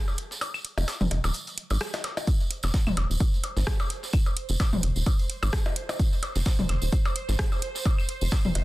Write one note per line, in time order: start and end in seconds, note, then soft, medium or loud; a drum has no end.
0.08 tambourine soft
0.08 percussion blips soft
0.18 closed hi-hat medium
0.31 snare medium
0.31 tambourine medium
0.41 closed hi-hat medium
0.41 tambourine medium
0.41 percussion blips medium
0.54 tambourine soft
0.54 claves medium
0.65 closed hi-hat medium
0.78 0.85 F1 loud
0.78 tambourine medium
0.78 percussion blips medium
0.88 snare loud
0.88 closed hi-hat medium
0.88 tambourine medium
0.88 percussion blips soft
1.01 1.08 F1 loud
1.01 mid tom medium
1.01 tambourine soft
1.11 1.20 F1 loud
1.11 closed hi-hat medium
1.11 percussion blips soft
1.24 1.31 D#1 loud
1.24 tambourine medium
1.24 percussion blips medium
1.34 closed hi-hat medium
1.34 tambourine medium
1.47 closed hi-hat soft
1.47 tambourine soft
1.58 closed hi-hat medium
1.70 1.78 G#1 loud
1.70 tambourine medium
1.70 percussion blips soft
1.80 cross-stick loud
1.80 snare loud
1.80 closed hi-hat medium
1.80 tambourine medium
1.80 claves medium
1.94 snare loud
1.94 closed hi-hat medium
1.94 tambourine soft
1.94 percussion blips medium
2.04 snare loud
2.04 closed hi-hat medium
2.04 percussion blips medium
2.17 closed hi-hat soft
2.17 tambourine medium
2.17 percussion blips medium
2.27 8.64 C5 medium
2.27 kick loud
2.27 closed hi-hat medium
2.27 tambourine medium
2.41 tambourine soft
2.51 closed hi-hat medium
2.63 2.71 F1 loud
2.63 snare medium
2.63 tambourine medium
2.63 percussion blips soft
2.74 kick loud
2.74 snare loud
2.74 closed hi-hat medium
2.74 tambourine medium
2.86 2.94 F1 loud
2.86 mid tom medium
2.86 tambourine soft
2.86 claves medium
2.97 3.06 F1 medium
2.97 snare soft
2.97 closed hi-hat medium
2.97 percussion blips medium
3.10 3.17 D#1 loud
3.10 tambourine medium
3.20 kick loud
3.20 closed hi-hat medium
3.20 tambourine medium
3.34 tambourine soft
3.44 closed hi-hat medium
3.44 percussion blips soft
3.57 3.64 G#1 loud
3.57 snare medium
3.57 tambourine medium
3.67 kick loud
3.67 cross-stick loud
3.67 snare loud
3.67 closed hi-hat medium
3.67 tambourine medium
3.79 tambourine soft
3.79 percussion blips medium
3.90 closed hi-hat medium
4.03 snare medium
4.03 tambourine medium
4.13 kick loud
4.13 closed hi-hat medium
4.13 tambourine medium
4.13 claves medium
4.26 tambourine soft
4.26 percussion blips soft
4.37 closed hi-hat medium
4.49 4.57 F1 loud
4.49 tambourine medium
4.60 kick loud
4.60 snare loud
4.60 closed hi-hat medium
4.60 tambourine medium
4.60 percussion blips medium
4.73 4.80 F1 loud
4.73 mid tom medium
4.73 tambourine soft
4.83 4.92 F1 loud
4.83 closed hi-hat loud
4.83 closed hi-hat medium
4.96 5.03 D#1 loud
4.96 tambourine medium
5.06 kick loud
5.06 closed hi-hat medium
5.06 tambourine medium
5.06 percussion blips soft
5.19 closed hi-hat soft
5.19 tambourine soft
5.30 closed hi-hat medium
5.43 5.50 G#1 loud
5.43 tambourine medium
5.43 claves medium
5.43 percussion blips medium
5.53 kick loud
5.53 cross-stick loud
5.53 snare loud
5.53 closed hi-hat medium
5.53 tambourine medium
5.66 tambourine soft
5.66 percussion blips medium
5.76 closed hi-hat loud
5.76 closed hi-hat medium
5.89 closed hi-hat soft
5.89 tambourine medium
5.89 percussion blips soft
5.89 percussion blips medium
5.99 kick loud
5.99 closed hi-hat medium
5.99 tambourine medium
6.13 tambourine soft
6.23 closed hi-hat loud
6.23 closed hi-hat medium
6.23 percussion blips medium
6.35 6.43 F1 loud
6.35 snare medium
6.35 tambourine medium
6.45 kick loud
6.45 snare loud
6.45 closed hi-hat medium
6.45 tambourine medium
6.59 6.66 F1 loud
6.59 mid tom medium
6.59 tambourine soft
6.69 6.78 F1 medium
6.69 snare soft
6.69 closed hi-hat medium
6.69 closed hi-hat loud
6.69 claves medium
6.69 percussion blips soft
6.82 6.89 D#1 loud
6.82 tambourine medium
6.92 kick loud
6.92 closed hi-hat medium
6.92 tambourine medium
7.05 tambourine soft
7.05 percussion blips medium
7.16 closed hi-hat loud
7.16 closed hi-hat medium
7.29 7.36 G#1 loud
7.29 snare medium
7.29 tambourine medium
7.39 kick loud
7.39 cross-stick loud
7.39 snare loud
7.39 closed hi-hat medium
7.39 tambourine medium
7.52 tambourine soft
7.52 percussion blips soft
7.62 closed hi-hat loud
7.62 closed hi-hat medium
7.75 snare medium
7.75 tambourine medium
7.85 kick loud
7.85 closed hi-hat medium
7.85 percussion blips medium
7.98 tambourine soft
7.98 claves medium
8.09 closed hi-hat loud
8.09 closed hi-hat medium
8.21 8.29 F1 loud
8.21 tambourine medium
8.31 kick loud
8.31 snare loud
8.31 closed hi-hat medium
8.31 tambourine medium
8.31 percussion blips soft
8.45 8.52 F1 loud
8.45 mid tom medium
8.45 tambourine soft
8.55 8.64 F1 medium
8.55 closed hi-hat medium
8.55 percussion blips medium